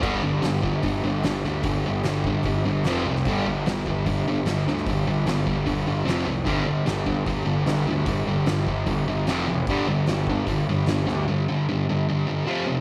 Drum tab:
CC |x---------------|----------------|----------------|----------------|
HH |----o---o---o---|o---o---o---o---|o---o---o---o---|o---o---o---o---|
SD |----o-------o-o-|----o-------o--o|----o-------o-oo|----o-------o---|
BD |o-----o-o-------|o-----o-o-------|o-----o-o-------|o-----o-o-------|

CC |----------------|----------------|----------------|----------------|
HH |o---o---o---o---|o---o---o---o---|o---o---o---o---|----------------|
SD |----o-------o---|----o-------o---|----o-------o-o-|----------------|
BD |o-----o-o-------|o-----o-o-------|o-----o-o-------|----------------|